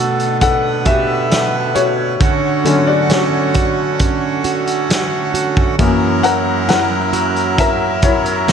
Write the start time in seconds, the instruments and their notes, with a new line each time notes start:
Already playing: accordion B2 D3 B3 A4, nylon-string guitar B2 A3 D4 F#4, felt piano B2 A3 D4 A4 F#5
0.19 closed hi-hat
0.41 nylon-string guitar D4, felt piano A4 F#5, accordion B4, kick, closed hi-hat
0.85 nylon-string guitar F#4, felt piano G4 E5, kick, closed hi-hat
1.30 nylon-string guitar A3, snare, closed hi-hat
1.75 nylon-string guitar F#4, felt piano F#4 C#5, closed hi-hat
2.20 nylon-string guitar D3 F#4, accordion D3 A3 C#4 F#4, kick, closed hi-hat
2.65 felt piano D3 F#3 C#4, nylon-string guitar A3, closed hi-hat
2.87 felt piano F#4 D5
3.09 nylon-string guitar C#4, felt piano F#4 C#5, snare, closed hi-hat
3.54 nylon-string guitar F#4, kick, closed hi-hat
3.99 nylon-string guitar C#4, kick, closed hi-hat
4.44 nylon-string guitar F#4, closed hi-hat
4.67 closed hi-hat
4.90 nylon-string guitar A3, snare, closed hi-hat
5.34 nylon-string guitar F#4, closed hi-hat
5.57 kick
5.79 nylon-string guitar F#2 F#4, felt piano F#2 E3 A#3, accordion F#2 F#3 E4 A#4, kick, closed hi-hat
6.23 nylon-string guitar A#3, felt piano A#4 F#5, closed hi-hat
6.68 nylon-string guitar E4, felt piano A#4 F#5, snare, closed hi-hat
7.13 nylon-string guitar F#4, closed hi-hat
7.36 closed hi-hat
7.58 nylon-string guitar E4, felt piano A#4 E5, kick, closed hi-hat
8.02 felt piano E4 C#5, nylon-string guitar F#4, kick, closed hi-hat
8.26 closed hi-hat
8.48 nylon-string guitar A#3, snare, closed hi-hat